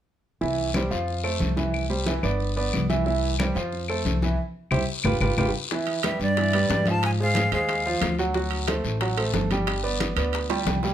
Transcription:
0.41 C2 E3 E4 E5, high conga, long guiro
0.58 high conga
0.74 G3 G4 C5, high conga, short guiro, claves
0.90 F2 F3 F4 F5, high conga, short guiro
1.08 high conga, long guiro
1.24 A3 A4 C5, high conga, claves
1.40 C2, high conga, short guiro
1.57 E3 E4 E5, high conga, short guiro
1.74 high conga, long guiro, claves
1.90 G3 G4 C5, high conga
2.06 E3 E4 E5, high conga, short guiro
2.23 G1 B3 B4 D5, high conga, short guiro, claves
2.40 high conga, long guiro
2.56 B3 B4 D5, high conga
2.73 C2, high conga, short guiro, claves
2.90 E3 E4 E5, high conga, short guiro
3.06 E3 E4 E5, high conga, long guiro
3.23 high conga
3.39 G3 G4 C5, high conga, short guiro, claves
3.55 F2 F3 F4 F5, high conga, short guiro
3.73 high conga, long guiro
3.88 A3 A4 C5, high conga, claves
4.05 C2, high conga, short guiro
4.22 E3 E4 E5, high conga, short guiro
4.71 C2 E4 G4 C5, low conga, long guiro, claves
5.04 G1 F4 G4 B4, low conga, long guiro, claves
5.20 G1 F4 G4 B4, low conga, long guiro, claves
5.37 G1 F4 G4 B4, low conga, long guiro, claves
5.71 E3 E4 E5, high bongo, high conga, long guiro
5.87 high bongo, high conga, high timbale
6.03 G3 G4 B4 E5, high bongo, high conga, high timbale, short guiro
6.19 G2 D5, high bongo, high conga, short guiro
6.37 E3 E4 E5, high bongo, high conga, high timbale, long guiro
6.53 G3 G4 B4, high conga, high timbale
6.69 G#2 G3 G4 B4, high bongo, low bongo, high conga, short guiro
6.85 F3 F4 F5, high bongo, high conga, high timbale, short guiro
6.90 A5
7.02 G#5, high bongo, high conga, high timbale, long guiro
7.19 G#3 G#4 C5 F5, high conga
7.35 high bongo, high conga, high timbale, short guiro
7.52 D#2 G#3 G#4 C5 F5, high bongo, high conga, high timbale, short guiro
7.68 high bongo, high conga, high timbale, long guiro
7.85 F3 F4 F5, high bongo, high conga
8.01 D2, high bongo, low bongo, high conga, high timbale, short guiro
8.19 F#3 F#4 F#5, high bongo, short guiro
8.34 F#3 F#4 F#5, high bongo, high conga, long guiro
8.51 high bongo, high conga, high timbale
8.68 A3 A4 C5, high bongo, high conga, high timbale, short guiro
8.84 A1, high bongo, high conga, short guiro
9.01 F#3 F#4 F#5, high bongo, high conga, high timbale, long guiro
9.17 A3 A4 C5, high conga, high timbale
9.33 G1 A3 A4 C5, high bongo, low bongo, high conga, short guiro
9.51 G3 G4 G5, high bongo, high conga, high timbale, short guiro
9.67 high bongo, high conga, high timbale, long guiro
9.83 B3 B4 D5, high conga
10.00 high bongo, high conga, high timbale, short guiro
10.16 D2 B3 B4 D5, high bongo, high conga, high timbale, short guiro
10.33 high bongo, high conga, high timbale, long guiro
10.50 G3 G4 G5, high bongo, high conga, high timbale
10.66 C2, high bongo, low bongo, high conga, short guiro
10.83 G3 G4 G5, high bongo, low timbale, short guiro

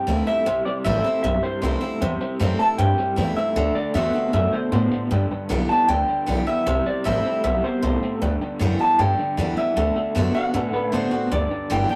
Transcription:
Already playing: G2 G5
0.07 D2 C3 E3 G3 A3 C4 E4 C5 E5 G5
0.27 C3 A3 C4 E4 C5 E5 G5
0.46 C2 C3 G3 C5 E5 G5
0.65 C3 G3 C5 D5 E5 G5, muted upright bass stroke
0.84 A1 C3 E3 G3 A3 C4 E4 C5 E5 G5
1.04 C3 A3 C4 E4 C5 E5 G5, muted upright bass stroke
1.23 B1 G2 C3 G3 C5 E5 G5
1.43 C3 G3 C5 E5 G5, muted upright bass stroke
1.62 C2 C3 E3 G3 A3 C4 E4 C5 E5 G5
1.81 C3 A3 C4 E4 C5 E5 G5, muted upright bass stroke
2.01 E2 C3 G3 C5 E5 G5
2.21 C3 G3 C5 E5 G5, muted upright bass stroke
2.40 F#2 C3 E3 G3 A3 C4 E4 C5 E5 G5
2.59 C3 A3 C4 E4 C5 E5 G5 A5, muted upright bass stroke
2.78 G2 C3 G3 C5 E5 G5
2.98 C3 G3 C5 E5 G5, muted upright bass stroke
3.16 E2 C3 E3 G3 A3 C4 E4 C5 E5 G5
3.36 C3 A3 C4 E4 C5 E5 G5, muted upright bass stroke
3.56 D2 D3 A3 A4 D5 F#5
3.75 D3 A3 A4 D5 F#5, muted upright bass stroke
3.94 E2 D3 A3 B3 C4 F#4 A4 D5 E5 F#5
4.13 D3 B3 C4 F#4 A4 D5 F#5, muted upright bass stroke
4.33 F#2 B2 D3 A3 A4 D5 E5 F#5
4.53 D3 A3 A4 C5 D5 F#5, muted upright bass stroke
4.72 A2 D3 B3 A4 C5 D5 F#5
4.91 D3 B3 A4 D5 F#5, muted upright bass stroke
5.11 G2 D3 B4 D5 G5
5.31 G2 D3 B4 D5 G5, muted upright bass stroke
5.49 B1 G2 D3 E3 G3 B3 G4 B4 D5 G5
5.69 G2 E3 B3 G4 B4 D5 G5 A5, muted upright bass stroke
5.88 D2 G2 D3 B4 D5 G5
6.08 G2 D3 B4 D5 G5, muted upright bass stroke
6.26 B1 G2 D3 E3 G3 B3 G4 B4 D5 G5
6.47 G2 E3 B3 G4 B4 D5 E5 G5
6.66 C2 C3 G3 C5 E5 G5
6.86 C3 G3 C5 D5 E5 G5, muted upright bass stroke
7.04 A1 C3 E3 G3 A3 C4 E4 C5 E5 G5
7.25 C3 A3 C5 E5 G5, muted upright bass stroke
7.44 B1 B2 C3 G3 C5 E5 G5
7.64 C3 G3 C5 E5 G5, muted upright bass stroke
7.82 C2 A2 C3 A3 C5 E5 G5
8.02 C3 A3 C5 E5 G5, muted upright bass stroke
8.21 D2 G2 D3 B4 D5 G5
8.41 G2 D3 B4 D5 G5, muted upright bass stroke
8.59 F#2 G2 D3 E3 G3 B3 G4 B4 D5 G5
8.79 G2 E3 B3 G4 B4 D5 F#5 A5, muted upright bass stroke
8.99 G2 D3 B4 D5 G5
9.18 G2 D3 B4 D5 G5, muted upright bass stroke
9.37 E2 G2 D3 E3 G3 B3 G4 B4 D5 G5
9.57 G2 E3 B3 G4 B4 D5 E5 G5
9.76 D2 D3 A3 A4 D5 F#5
9.95 D3 A3 A4 D5 F#5, muted upright bass stroke
10.15 F#2 D3 A3 B3 C4 F#4 A4 D5 F#5
10.34 D3 B3 C4 F#4 A4 D5 F#5, muted upright bass stroke
10.54 A2 B2 D3 A3 A4 D5 F#5
10.73 D3 A3 A4 B4 D5 F#5, muted upright bass stroke
10.89 D3 E5
10.93 A2 A3 B3 C4 F#4 A4 C5 D5 F#5
11.11 D3 B3 C4 F#4 A4 D5 F#5, muted upright bass stroke
11.31 D2 G2 D3 B4 D5 G5
11.50 G2 D3 B4 G5, muted upright bass stroke
11.70 G1 G2 D3 E3 G3 B3 G4 B4 G5
11.89 G2 D3 B3 G4 B4 D5 G5, muted upright bass stroke

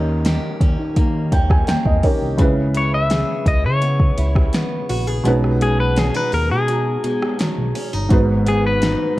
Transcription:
Already playing: D#2 D#3 A#3 C#4 G4 D#5, downlifter
0.25 G4, snare, closed hi-hat
0.61 D#2 C#4, kick, closed hi-hat
0.79 D#3
0.96 A#3, kick, closed hi-hat
1.32 D#2 C#4 G5, kick, closed hi-hat
1.50 G#5, kick, cross-stick
1.67 E2 A#3 G5, snare, closed hi-hat
1.85 E2 D#5, kick
2.03 D#3 A#3 C#4 G4 A#4 C#5, kick, open hi-hat
2.22 C2
2.38 C#2 C#3 G#3 C#4 E4 B4, kick, closed hi-hat
2.75 E4 C#5, closed hi-hat
2.94 E5
3.10 G#4, snare, closed hi-hat
3.46 C#2 E4 D#5, kick, closed hi-hat
3.64 C#3 C#5
3.82 B3, closed hi-hat
4.00 kick
4.18 C#2 E4, closed hi-hat
4.36 kick, cross-stick
4.53 B3, snare, closed hi-hat
4.89 A#1 F#4, open hi-hat
5.07 G#4
5.23 B1 B2 G#3 C#4 D#4, closed hi-hat
5.28 B4
5.44 cross-stick
5.61 G#3 G#4, closed hi-hat
5.80 B4
5.96 C#4 G#4, snare, closed hi-hat
6.14 D#4 B4
6.32 D#2 G#3 A#4, open hi-hat
6.51 B2 G#4
6.68 F#3, closed hi-hat
7.04 B2 G#3, closed hi-hat
7.22 cross-stick
7.39 B1 F#3, snare, closed hi-hat
7.58 B1
7.75 C#4, open hi-hat
7.93 G1 D#4
8.09 G#1 G#2 G#3 B3 F#4, kick, closed hi-hat
8.13 B4
8.46 B3 G#4, closed hi-hat
8.67 B4
8.82 D#4, snare, closed hi-hat

